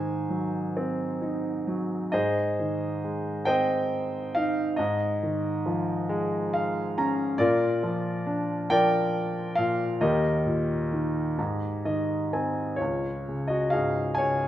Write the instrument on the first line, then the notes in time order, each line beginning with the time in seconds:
grand piano
Already playing: G#2 D#3 C5 G#5
0.30 F#3
0.77 C4
1.22 D#4
1.67 F#3
2.12 G#2 G#4 C5 D#5
2.59 D#3
3.04 G#3
3.45 C4 C5 D#5 G5
4.35 D#4 F5
4.76 G#2 D#5
5.23 D#3
5.66 F3
6.09 G#3
6.54 F5
6.98 C#4 A#5
7.38 A#2 F4 A#4 D5
7.83 F3
8.26 D4
8.70 F3 A#4 D5 G5
9.55 A#2 F5
10.01 D#2 G4 A#4 D#5
10.45 A#2
10.92 D#3
11.38 G#2
11.85 D#3 D#5
12.33 C4 G#5
12.76 F4 C#5
12.81 C#2
13.28 C#3
13.48 F#4 D#5
13.70 G#4 F5
13.75 G#2
14.15 C#5 G#5
14.20 C#3